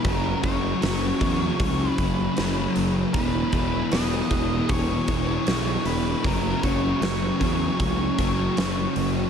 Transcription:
0.04 fingered electric bass F#1, distorted electric guitar F#2 C#3 F#3, lead electric guitar B4, kick, open hi-hat
0.15 lead electric guitar A#4
0.43 fingered electric bass F#1, distorted electric guitar C#3 F#3, lead electric guitar C#5, kick, open hi-hat
0.82 fingered electric bass F#1, distorted electric guitar F#2 C#3 F#3, snare, open hi-hat
1.19 fingered electric bass E2, distorted electric guitar C#3 F#3, kick, open hi-hat
1.60 fingered electric bass C#2, kick, open hi-hat
1.90 lead electric guitar B4
1.97 fingered electric bass F#1, distorted electric guitar C#3 F#3, kick, open hi-hat
2.36 fingered electric bass F#1, distorted electric guitar F#2 C#3 F#3, snare, open hi-hat
2.76 fingered electric bass F#1, open hi-hat
3.13 fingered electric bass E1, distorted electric guitar E2 B2, lead electric guitar B4, kick, open hi-hat
3.17 distorted electric guitar E3
3.52 fingered electric bass E1, distorted electric guitar B2 E3, kick, open hi-hat
3.92 fingered electric bass E1, distorted electric guitar E2 B2 E3, lead electric guitar D#5, snare, open hi-hat
4.31 fingered electric bass E1, distorted electric guitar E3, kick, open hi-hat
4.35 distorted electric guitar B2
4.69 fingered electric bass E1, lead electric guitar C#5, kick, open hi-hat
5.07 fingered electric bass E1, distorted electric guitar B2 E3, kick, open hi-hat
5.46 fingered electric bass B1, distorted electric guitar E2 B2 E3, snare, open hi-hat
5.85 fingered electric bass E1, lead electric guitar B4, open hi-hat
6.24 fingered electric bass F#1, distorted electric guitar F#2 C#3 F#3, lead electric guitar A#4, kick, open hi-hat
6.63 fingered electric bass F#1, distorted electric guitar C#3 F#3, lead electric guitar C#5, kick, open hi-hat
7.01 fingered electric bass F#1, distorted electric guitar F#2 C#3 F#3, snare, open hi-hat
7.40 fingered electric bass E2, distorted electric guitar C#3 F#3, kick, open hi-hat
7.80 fingered electric bass C#2, kick, open hi-hat
8.19 fingered electric bass F#1, distorted electric guitar C#3 F#3, kick, open hi-hat
8.56 fingered electric bass F#1, distorted electric guitar F#2 C#3 F#3, snare, open hi-hat
8.96 fingered electric bass F#1, open hi-hat

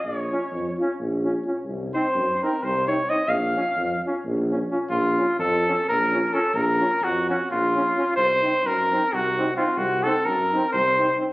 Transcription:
0.01 tuba A#1, flugelhorn D5
0.18 flugelhorn C#5
0.31 trombone C#4, euphonium F4
0.52 tuba F2
0.79 trombone C#4, euphonium F4
1.00 tuba A#1
1.25 trombone C#4, euphonium F4
1.45 trombone C#4, euphonium F4
1.65 tuba C2
1.93 trombone C4, euphonium D#4, flugelhorn C5
2.15 tuba F#2
2.43 trombone C4, euphonium D#4, flugelhorn A#4
2.63 tuba C2, flugelhorn C5
2.87 trombone C4, euphonium D#4, flugelhorn C#5
3.08 trombone C4, euphonium D#4, flugelhorn D#5
3.28 tuba A#1, flugelhorn F5
3.56 trombone C#4, euphonium F4
3.76 tuba F2
4.05 trombone C#4, euphonium F4
4.25 tuba A#1
4.50 trombone C#4, euphonium F4
4.70 trombone C#4, euphonium F4
4.90 tuba A#1, flugelhorn F4
5.18 trombone C#4, euphonium F4
5.38 tuba F2, flugelhorn A4
5.68 trombone C#4, euphonium F4
5.89 tuba A#1, flugelhorn A#4
6.13 trombone C#4, euphonium F4
6.33 trombone C#4, euphonium F4, flugelhorn A4
6.53 tuba A#1, flugelhorn A#4
6.80 trombone C#4, euphonium F4
7.02 tuba F2, flugelhorn F#4
7.29 trombone C#4, euphonium F4, flugelhorn F#4
7.51 tuba A#1, flugelhorn F4
7.75 trombone C#4, euphonium F4
7.96 trombone C#4, euphonium F4
8.16 tuba C2, flugelhorn C5
8.42 trombone C4, euphonium D#4
8.65 tuba F#2, flugelhorn A#4
8.92 trombone C4, euphonium D#4
9.13 tuba C2, flugelhorn F#4
9.37 trombone C4, euphonium D#4
9.56 trombone C4, euphonium D#4, flugelhorn F4
9.77 tuba C2, flugelhorn F#4
10.03 trombone C4, euphonium D#4, flugelhorn A4
10.25 tuba F#2, flugelhorn A#4
10.52 trombone C4, euphonium D#4
10.72 tuba C2, flugelhorn C5
10.98 trombone C4, euphonium D#4
11.16 trombone C4, euphonium D#4

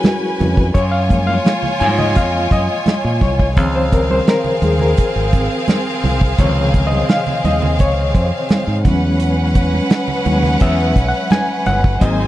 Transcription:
Already playing: reed electric piano F#3 G#3 C#4 E4 F#4 G#4 A#4 B4, violin section C#4 B4 G#5
0.03 snare, closed hi-hat, high conga
0.39 fingered electric bass F2, snare, open hi-hat, muted conga, high conga, low conga
0.57 kick
0.74 fingered electric bass F#2, violin section F4 C#5 G#5, reed electric piano C#5, kick, closed hi-hat
0.91 reed electric piano F5
1.08 reed electric piano F3 G#3 A#3, kick, closed hi-hat, muted conga
1.27 reed electric piano F5, high conga
1.45 snare, closed hi-hat, muted conga
1.63 low conga
1.80 fingered electric bass G#2, reed electric piano G#5, closed hi-hat, muted conga, high conga
1.98 reed electric piano D#5, snare, low conga
2.15 fingered electric bass F2, reed electric piano F5, kick, closed hi-hat, muted conga
2.51 fingered electric bass F#2, reed electric piano D#5, kick, closed hi-hat
2.86 snare, closed hi-hat, muted conga, high conga
3.05 fingered electric bass A#2
3.21 fingered electric bass C2, reed electric piano C#5, kick, snare, open hi-hat, muted conga, high conga, low conga
3.39 kick
3.56 fingered electric bass C#2, reed electric piano D#3 F3 C4, violin section C4 G#4 F5, kick, closed hi-hat
3.76 reed electric piano C5
3.92 reed electric piano A#4, kick, closed hi-hat
4.10 reed electric piano C5, high conga
4.27 reed electric piano A#4, snare, closed hi-hat
4.44 low conga
4.62 fingered electric bass D#2, reed electric piano G#4, closed hi-hat, high conga
4.79 reed electric piano A#4, low conga
4.97 kick, closed hi-hat
5.16 fingered electric bass G#1
5.33 kick, closed hi-hat, muted conga
5.68 snare, closed hi-hat, muted conga, high conga
6.03 fingered electric bass C2, snare, open hi-hat, high conga, low conga
6.21 kick
6.38 fingered electric bass C#2, reed electric piano C3 D#3 F3 C#5, kick, closed hi-hat, muted conga
6.74 kick, closed hi-hat
6.87 reed electric piano D#5
6.92 high conga
7.09 reed electric piano F5, snare, closed hi-hat
7.27 low conga
7.44 fingered electric bass D#2, reed electric piano D#5, closed hi-hat, muted conga, high conga
7.62 low conga
7.79 fingered electric bass C#2, reed electric piano C#5, kick, closed hi-hat
8.15 fingered electric bass F2, reed electric piano C5, kick, closed hi-hat
8.49 snare, closed hi-hat, high conga
8.67 fingered electric bass G#2
8.84 fingered electric bass E2, reed electric piano F#3 G#3 C#4, violin section C#4 B4 F#5, kick, snare, closed hi-hat, high conga, low conga
9.20 closed hi-hat, muted conga
9.55 kick, closed hi-hat, muted conga
9.73 high conga
9.90 snare, closed hi-hat, muted conga
10.08 low conga
10.25 fingered electric bass D#2, reed electric piano F#3 G#3 C#4, closed hi-hat, muted conga, high conga
10.43 snare, low conga
10.60 fingered electric bass E2, reed electric piano E5, kick, closed hi-hat, muted conga
10.95 fingered electric bass B1, kick, closed hi-hat, muted conga
11.09 reed electric piano F#5
11.30 reed electric piano G#5, snare, closed hi-hat, muted conga, high conga
11.66 fingered electric bass G1, reed electric piano F#5, snare, closed hi-hat, high conga, low conga
11.84 kick
12.00 fingered electric bass G#1, reed electric piano F#3 A#3 C4 D#5, violin section D#4 C5 G#5, kick, closed hi-hat

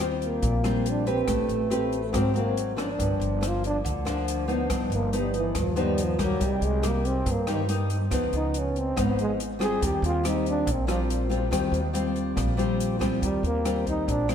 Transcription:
Already playing: upright bass D#2, nylon-string guitar D#3
0.00 nylon-string guitar G3 C4 F4
0.22 trombone A#3, closed hi-hat
0.42 upright bass A#1, nylon-string guitar A#2, kick, closed hi-hat
0.64 nylon-string guitar G3 C4 F4, cross-stick, closed hi-hat
0.86 trombone D4, closed hi-hat
1.06 nylon-string guitar C4 G4 B4, trombone C4, closed hi-hat
1.28 upright bass A1, nylon-string guitar A3, kick, cross-stick, closed hi-hat
1.49 upright bass A1, closed hi-hat
1.53 trombone A3
1.70 nylon-string guitar C4 G4 B4, closed hi-hat
1.92 closed hi-hat
2.12 upright bass G#1, nylon-string guitar G#2 F#3 A#3 C4, kick, cross-stick, closed hi-hat
2.18 trombone C4
2.34 nylon-string guitar F#3 A#3 C4, trombone A#3, closed hi-hat
2.57 closed hi-hat
2.77 nylon-string guitar F3 A#3 D4, cross-stick, closed hi-hat
2.81 trombone D4
2.98 upright bass G1, nylon-string guitar G2, kick, closed hi-hat
3.20 upright bass G1, closed hi-hat
3.41 nylon-string guitar F3 A#3 D4, cross-stick, closed hi-hat
3.48 trombone F4
3.64 trombone D4, closed hi-hat
3.84 upright bass D2, nylon-string guitar D3, kick, closed hi-hat
4.05 nylon-string guitar F3 A#3 D4, cross-stick, closed hi-hat
4.28 closed hi-hat
4.48 nylon-string guitar F3 B3 D#4, closed hi-hat
4.70 upright bass G1, nylon-string guitar G2, kick, cross-stick, closed hi-hat
4.90 upright bass G1, trombone A#3, closed hi-hat
5.12 nylon-string guitar F3 B3 D#4, closed hi-hat
5.18 trombone G3
5.34 trombone E3, closed hi-hat
5.55 upright bass D#2, nylon-string guitar G2, kick, cross-stick, closed hi-hat
5.61 trombone F3
5.76 nylon-string guitar F3 B3 D#4, closed hi-hat
5.80 trombone G3
5.98 closed hi-hat
6.04 trombone F3
6.19 trombone F#3, nylon-string guitar G3 A#3 D#4, kick, cross-stick, closed hi-hat
6.40 upright bass C2, nylon-string guitar C3, kick, closed hi-hat
6.46 trombone G3
6.61 upright bass C2, closed hi-hat
6.66 trombone G#3
6.82 nylon-string guitar G3 A#3 D#4, cross-stick, closed hi-hat
6.87 trombone A#3
7.05 trombone C4, closed hi-hat
7.26 nylon-string guitar G2, upright bass G2, kick, closed hi-hat
7.32 trombone A#3
7.47 trombone D#3, nylon-string guitar G3 A#3 D#4, cross-stick, closed hi-hat
7.69 nylon-string guitar G3 A#3 D#4, closed hi-hat
7.90 closed hi-hat
8.10 upright bass C#2, nylon-string guitar C#3 F3 B3 D#4, kick, cross-stick, closed hi-hat
8.33 upright bass C#2, trombone D#4, closed hi-hat
8.54 closed hi-hat
8.58 trombone C#4
8.76 trombone C4, closed hi-hat
8.96 upright bass G#1, nylon-string guitar G#2 F3 B3 D#4, kick, cross-stick, closed hi-hat
9.03 trombone B3
9.19 trombone G#3, closed hi-hat
9.40 closed hi-hat
9.59 nylon-string guitar G3 C4 F4, cross-stick, closed hi-hat
9.63 trombone G#4
9.81 upright bass D#2, nylon-string guitar D#3, kick, closed hi-hat
9.86 trombone G4
10.02 upright bass D#2, trombone F4, closed hi-hat
10.23 nylon-string guitar G3 C4 F4, cross-stick, closed hi-hat
10.28 trombone D#4
10.46 trombone D4, closed hi-hat
10.66 upright bass A#1, nylon-string guitar A#2, kick, closed hi-hat
10.72 trombone C4
10.87 trombone F3, nylon-string guitar G3 C4 F4, cross-stick, closed hi-hat
11.10 closed hi-hat
11.29 nylon-string guitar G3 C4 F4, closed hi-hat
11.51 upright bass D#2, nylon-string guitar D#3 G3 C4 F4, kick, cross-stick, closed hi-hat
11.72 upright bass D#2, closed hi-hat
11.93 nylon-string guitar G3 C4 F4, closed hi-hat
12.16 closed hi-hat
12.36 upright bass A#1, nylon-string guitar A#2, kick, cross-stick, closed hi-hat
12.57 nylon-string guitar G3 C4 F4, closed hi-hat
12.80 closed hi-hat
12.99 nylon-string guitar G3 C4 F4, kick, cross-stick, closed hi-hat
13.22 upright bass D#2, nylon-string guitar D#3, trombone G3, kick, closed hi-hat
13.43 upright bass D#2, trombone A#3, closed hi-hat
13.65 nylon-string guitar G3 C4 F4, cross-stick, closed hi-hat
13.87 trombone D#4, kick, closed hi-hat
14.07 upright bass A#1, nylon-string guitar A#2, trombone D4, kick, closed hi-hat
14.28 nylon-string guitar G3 C4 F4, trombone C4, cross-stick, closed hi-hat

